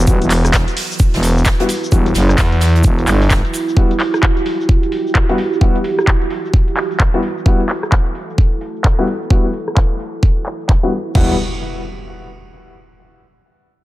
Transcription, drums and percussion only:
0.07 kick loud
0.07 closed hi-hat medium
0.07 cabasa medium
0.07 shaker medium
0.22 closed hi-hat medium
0.22 cabasa soft
0.30 clap medium
0.30 open hi-hat loud
0.30 shaker medium
0.45 cross-stick medium
0.45 closed hi-hat soft
0.45 cabasa medium
0.53 kick loud
0.53 snare loud
0.53 clap loud
0.53 closed hi-hat medium
0.53 cabasa medium
0.53 shaker medium
0.68 closed hi-hat soft
0.68 cabasa soft
0.77 open hi-hat loud
0.77 open hi-hat medium
0.92 cabasa medium
0.99 kick loud
0.99 closed hi-hat medium
0.99 cabasa medium
0.99 shaker medium
1.14 snare medium
1.14 closed hi-hat soft
1.14 cabasa soft
1.23 open hi-hat loud
1.23 shaker medium
1.38 cabasa medium
1.45 kick loud
1.45 snare loud
1.45 clap loud
1.45 closed hi-hat medium
1.45 cabasa medium
1.45 shaker medium
1.60 closed hi-hat soft
1.60 closed hi-hat medium
1.60 cabasa soft
1.69 open hi-hat loud
1.69 shaker medium
1.84 cabasa medium
1.92 kick loud
1.92 closed hi-hat medium
1.92 cabasa medium
1.92 shaker medium
2.06 closed hi-hat medium
2.06 cabasa soft
2.14 snare soft
2.14 open hi-hat loud
2.14 shaker medium
2.29 cross-stick medium
2.29 closed hi-hat soft
2.29 cabasa medium
2.38 kick loud
2.38 snare loud
2.38 clap loud
2.38 closed hi-hat medium
2.38 cabasa medium
2.38 shaker medium
2.52 closed hi-hat soft
2.52 cabasa soft
2.61 snare medium
2.61 open hi-hat loud
2.61 shaker medium
2.75 closed hi-hat soft
2.75 cabasa medium
2.83 kick loud
2.83 closed hi-hat medium
2.83 cabasa medium
2.83 shaker medium
2.99 closed hi-hat soft
2.99 cabasa soft
3.07 clap medium
3.07 open hi-hat loud
3.07 shaker medium
3.22 open hi-hat medium
3.22 cabasa medium
3.30 kick loud
3.30 snare loud
3.30 clap loud
3.30 cabasa medium
3.30 shaker medium
3.45 closed hi-hat medium
3.45 cabasa soft
3.54 open hi-hat loud
3.54 shaker medium
3.69 cabasa medium
3.77 kick loud
3.77 closed hi-hat medium
3.77 cabasa medium
3.91 closed hi-hat medium
3.91 cabasa soft
4.00 clap medium
4.00 open hi-hat loud
4.14 cross-stick medium
4.14 closed hi-hat soft
4.14 cabasa medium
4.23 kick loud
4.23 clap loud
4.23 closed hi-hat medium
4.23 cabasa medium
4.37 closed hi-hat soft
4.37 cabasa soft
4.46 open hi-hat loud
4.61 cabasa medium
4.69 kick loud
4.69 closed hi-hat medium
4.69 cabasa medium
4.83 closed hi-hat soft
4.83 cabasa soft
4.92 open hi-hat loud
5.07 cabasa medium
5.15 kick loud
5.15 clap loud
5.29 closed hi-hat medium
5.29 cabasa soft
5.38 open hi-hat loud
5.53 cabasa medium
5.61 kick loud
5.61 closed hi-hat medium
5.61 cabasa medium
5.75 closed hi-hat medium
5.75 cabasa soft
5.84 open hi-hat loud
5.99 cross-stick medium
5.99 closed hi-hat soft
5.99 cabasa medium
6.07 kick loud
6.07 clap loud
6.22 closed hi-hat medium
6.22 cabasa soft
6.30 open hi-hat loud
6.45 cabasa medium
6.54 kick loud
6.54 closed hi-hat medium
6.68 closed hi-hat medium
6.68 cabasa soft
6.77 clap medium
6.77 open hi-hat loud
6.91 open hi-hat medium
6.91 cabasa medium
7.00 kick loud
7.00 clap loud
7.14 closed hi-hat medium
7.14 cabasa soft
7.23 open hi-hat loud
7.38 cabasa medium
7.46 kick loud
7.60 closed hi-hat medium
7.60 cabasa soft
7.69 clap medium
7.69 open hi-hat loud
7.83 cross-stick medium
7.83 closed hi-hat soft
7.83 cabasa medium
7.92 kick loud
7.92 clap loud
8.06 closed hi-hat medium
8.15 open hi-hat loud
8.30 cabasa medium
8.38 kick loud
8.38 closed hi-hat medium
8.52 closed hi-hat medium
8.52 cabasa soft
8.61 open hi-hat loud
8.76 cabasa medium
8.84 kick loud
8.84 clap loud
8.98 closed hi-hat medium
9.07 open hi-hat loud
9.22 cabasa medium
9.30 kick loud
9.45 closed hi-hat medium
9.53 open hi-hat loud
9.68 cross-stick medium
9.68 closed hi-hat soft
9.68 cabasa medium
9.77 kick loud
9.77 clap loud
9.91 closed hi-hat medium
10.00 open hi-hat loud
10.15 cabasa medium
10.23 kick loud
10.37 closed hi-hat medium
10.46 clap medium
10.46 open hi-hat loud
10.60 open hi-hat medium
10.60 cabasa medium
10.69 kick loud
10.69 clap loud
10.92 open hi-hat loud
11.06 closed hi-hat soft
11.06 cabasa medium
11.15 kick loud
11.15 floor tom loud
11.15 crash medium

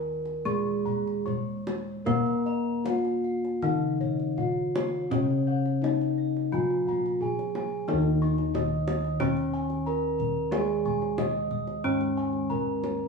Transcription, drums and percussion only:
0.25 kendang slap soft
0.46 kendang low medium
0.87 kendang low soft
1.07 kendang slap soft
1.28 kendang low medium
1.67 kendang high medium
2.07 kendang high medium
2.07 kendang low medium
2.26 kendang slap soft
2.86 kendang high medium
3.05 kendang slap soft
3.45 kendang slap soft
3.62 kendang low medium
4.01 kendang low soft
4.20 kendang slap soft
4.38 kendang low medium
4.76 kendang high medium
5.11 kendang high medium
5.11 kendang low medium
5.30 kendang slap soft
5.66 kendang slap soft
5.84 kendang high medium
6.01 kendang slap soft
6.37 kendang slap soft
6.54 kendang low soft
6.70 kendang slap soft
6.88 kendang low soft
7.06 kendang slap soft
7.22 kendang low soft
7.39 kendang slap soft
7.55 kendang high soft
7.88 kendang high medium
8.38 kendang slap soft
8.55 kendang high medium
8.55 kendang low medium
8.88 kendang high medium
9.04 kendang slap soft
9.20 kendang high medium
9.20 kendang low medium
9.37 kendang slap soft
9.70 kendang slap soft
10.20 kendang low medium
10.52 kendang high medium
10.86 kendang low medium
11.02 kendang slap soft
11.18 kendang high medium
11.18 kendang low medium
11.51 kendang low medium
11.67 kendang slap soft
12.01 kendang slap soft
12.33 kendang slap soft
12.50 kendang low soft
12.84 kendang high soft

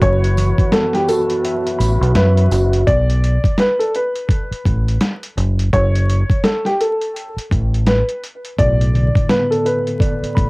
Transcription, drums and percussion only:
0.01 kick loud
0.01 closed hi-hat loud
0.24 closed hi-hat medium
0.37 closed hi-hat medium
0.37 tambourine medium
0.58 kick loud
0.58 closed hi-hat medium
0.72 snare loud
0.72 closed hi-hat medium
0.93 snare soft
0.93 closed hi-hat medium
1.09 closed hi-hat medium
1.09 tambourine medium
1.30 closed hi-hat medium
1.45 closed hi-hat medium
1.67 closed hi-hat medium
1.80 closed hi-hat medium
1.80 tambourine medium
2.03 closed hi-hat medium
2.15 snare loud
2.15 closed hi-hat medium
2.37 closed hi-hat medium
2.51 closed hi-hat medium
2.51 tambourine medium
2.73 closed hi-hat medium
2.87 kick loud
2.87 closed hi-hat loud
3.10 closed hi-hat medium
3.24 closed hi-hat medium
3.44 kick loud
3.44 closed hi-hat medium
3.58 snare loud
3.58 closed hi-hat medium
3.80 closed hi-hat soft
3.95 closed hi-hat medium
4.16 closed hi-hat medium
4.29 kick medium
4.29 closed hi-hat medium
4.52 closed hi-hat medium
4.66 kick loud
4.66 closed hi-hat medium
4.88 closed hi-hat soft
5.01 snare loud
5.01 closed hi-hat medium
5.23 closed hi-hat medium
5.38 closed hi-hat medium
5.59 closed hi-hat medium
5.73 kick loud
5.73 closed hi-hat loud
5.95 closed hi-hat medium
6.09 closed hi-hat medium
6.30 kick medium
6.30 closed hi-hat soft
6.44 snare loud
6.44 closed hi-hat medium
6.65 snare soft
6.65 closed hi-hat soft
6.81 closed hi-hat medium
7.01 closed hi-hat medium
7.16 closed hi-hat medium
7.38 closed hi-hat medium
7.51 kick medium
7.51 closed hi-hat medium
7.74 closed hi-hat soft
7.87 snare loud
7.87 closed hi-hat medium
8.09 closed hi-hat medium
8.24 closed hi-hat medium
8.45 closed hi-hat medium
8.59 kick loud
8.59 closed hi-hat loud
8.81 closed hi-hat medium
8.95 closed hi-hat medium
9.15 kick medium
9.15 closed hi-hat medium
9.29 snare loud
9.29 closed hi-hat medium
9.52 closed hi-hat soft
9.66 closed hi-hat medium
9.87 closed hi-hat medium
10.00 kick medium
10.00 closed hi-hat medium
10.24 closed hi-hat medium
10.37 kick medium
10.37 closed hi-hat medium

